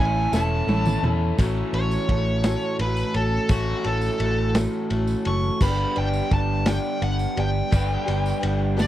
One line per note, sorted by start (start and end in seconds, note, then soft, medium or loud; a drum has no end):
0.00 0.26 A1 medium
0.00 0.67 E3 medium
0.00 0.33 A3 medium
0.00 0.33 C#4 medium
0.00 0.32 E4 medium
0.00 0.32 A4 medium
0.00 0.33 G#5 loud
0.32 0.61 E1 medium
0.32 0.69 A2 medium
0.32 0.69 E3 medium
0.32 0.66 A3 medium
0.32 0.67 C#4 medium
0.32 0.68 E4 medium
0.32 0.68 A4 medium
0.32 1.09 A5 medium
0.32 snare medium
0.32 tambourine loud
0.67 0.96 A1 medium
0.67 1.36 E3 medium
0.67 1.03 A3 medium
0.67 1.04 C#4 medium
0.67 1.04 E4 medium
0.67 1.02 A4 medium
0.67 high tom loud
0.67 tambourine soft
0.85 mid tom medium
0.85 tambourine medium
1.03 1.31 E2 medium
1.03 1.38 A3 medium
1.03 1.38 C#4 medium
1.03 1.39 E4 medium
1.03 1.39 A4 medium
1.03 mid tom loud
1.38 1.62 A1 medium
1.38 1.74 A2 medium
1.38 1.74 E3 medium
1.38 1.74 F#3 medium
1.38 1.74 A3 medium
1.38 1.73 C#4 medium
1.38 3.48 E4 medium
1.38 1.73 A4 medium
1.38 kick loud
1.38 ride medium
1.38 tambourine medium
1.73 1.96 A1 medium
1.73 2.08 F#3 soft
1.73 2.08 A3 soft
1.73 2.09 C#4 soft
1.73 2.09 A4 soft
1.73 2.76 C#5 medium
1.73 ride medium
1.91 tambourine medium
2.09 2.54 A1 medium
2.09 2.44 F#3 medium
2.09 2.43 A3 medium
2.09 2.43 C#4 medium
2.09 2.43 A4 medium
2.09 kick medium
2.09 ride medium
2.44 2.80 A2 medium
2.44 2.80 E3 medium
2.44 2.79 F#3 medium
2.44 2.79 A3 medium
2.44 2.79 C#4 medium
2.44 2.79 A4 medium
2.44 snare loud
2.44 ride medium
2.44 tambourine loud
2.61 tambourine soft
2.79 3.02 A1 medium
2.79 3.15 F#3 medium
2.79 3.14 A3 medium
2.79 3.14 C#4 medium
2.79 3.13 A4 medium
2.79 3.14 B4 medium
2.79 ride medium
2.97 tambourine medium
3.14 3.37 A1 medium
3.14 3.48 F#3 soft
3.14 3.49 A3 soft
3.14 3.49 C#4 soft
3.14 3.49 A4 medium
3.14 3.50 A4 medium
3.14 ride medium
3.49 3.72 A1 loud
3.49 3.85 A2 medium
3.49 3.85 E3 medium
3.49 3.85 F#3 medium
3.49 3.85 A3 medium
3.49 3.84 C#4 medium
3.49 5.60 E4 medium
3.49 3.85 F#4 medium
3.49 3.83 A4 medium
3.49 kick loud
3.49 ride loud
3.49 tambourine loud
3.84 4.08 A1 medium
3.84 4.19 F#3 soft
3.84 4.20 A3 medium
3.84 4.20 C#4 medium
3.84 4.20 A4 medium
3.84 4.54 A4 medium
3.84 ride medium
4.01 tambourine medium
4.20 4.66 A1 medium
4.20 4.55 F#3 medium
4.20 4.54 A3 medium
4.20 4.54 C#4 medium
4.20 4.54 A4 medium
4.20 ride medium
4.55 4.91 A2 medium
4.55 4.91 E3 medium
4.55 4.89 F#3 medium
4.55 4.90 A3 medium
4.55 4.91 C#4 medium
4.55 4.90 A4 medium
4.55 snare loud
4.55 ride medium
4.55 tambourine loud
4.73 tambourine soft
4.90 5.14 A1 medium
4.90 5.26 F#3 medium
4.90 5.26 A3 medium
4.90 5.26 C#4 medium
4.90 5.25 A4 medium
4.90 ride medium
5.08 tambourine medium
5.25 5.49 F#1 medium
5.25 5.61 F#3 soft
5.25 5.61 A3 soft
5.25 5.62 C#4 medium
5.25 5.61 A4 medium
5.25 5.61 C#6 medium
5.25 ride medium
5.60 5.84 G1 medium
5.60 5.97 G2 medium
5.60 5.97 D3 medium
5.60 5.95 G3 medium
5.60 5.95 B3 medium
5.60 5.94 D4 medium
5.60 5.93 G4 medium
5.60 7.72 B4 loud
5.60 5.96 B5 medium
5.60 kick loud
5.60 tambourine loud
5.60 crash medium
5.95 6.20 G1 medium
5.95 6.30 G3 medium
5.95 6.31 B3 soft
5.95 6.31 D4 medium
5.95 6.31 G4 medium
5.95 6.32 G5 medium
5.95 ride medium
6.13 tambourine medium
6.31 6.77 G1 medium
6.31 6.66 G3 medium
6.31 6.65 B3 medium
6.31 6.65 D4 medium
6.31 6.65 G4 medium
6.31 6.67 A5 medium
6.31 kick medium
6.31 ride medium
6.66 7.03 G2 medium
6.66 7.02 D3 medium
6.66 6.99 G3 medium
6.66 7.00 B3 medium
6.66 7.00 D4 medium
6.66 7.02 G4 medium
6.66 7.02 G5 medium
6.66 snare loud
6.66 ride loud
6.66 tambourine medium
6.84 tambourine soft
7.00 7.25 G1 medium
7.00 7.37 G3 medium
7.00 7.36 B3 medium
7.00 7.36 D4 medium
7.00 7.35 G4 medium
7.00 7.37 F#5 medium
7.00 ride medium
7.19 tambourine medium
7.36 7.60 G1 medium
7.36 7.70 G3 soft
7.36 7.71 B3 medium
7.36 7.71 D4 medium
7.36 7.71 G4 medium
7.36 8.76 G5 loud
7.36 ride medium
7.71 7.96 G1 medium
7.71 8.07 G2 medium
7.71 8.08 D3 medium
7.71 8.06 G3 medium
7.71 8.06 B3 medium
7.71 8.05 D4 medium
7.71 8.04 G4 medium
7.71 kick loud
7.71 ride medium
7.71 tambourine medium
7.75 8.87 B4 loud
8.06 8.31 G1 medium
8.06 8.39 G3 soft
8.06 8.40 B3 soft
8.06 8.41 D4 soft
8.06 8.42 G4 medium
8.06 ride medium
8.06 tambourine soft
8.26 tambourine medium
8.41 8.87 G1 medium
8.41 8.76 G3 medium
8.41 8.76 B3 medium
8.41 8.75 D4 medium
8.41 8.76 G4 medium
8.41 ride medium
8.77 8.87 G2 medium
8.77 8.87 D3 medium
8.77 8.87 G3 medium
8.77 8.87 B3 medium
8.77 8.87 D4 medium
8.77 8.87 G4 medium
8.77 snare medium
8.77 tambourine medium
8.81 8.87 D5 loud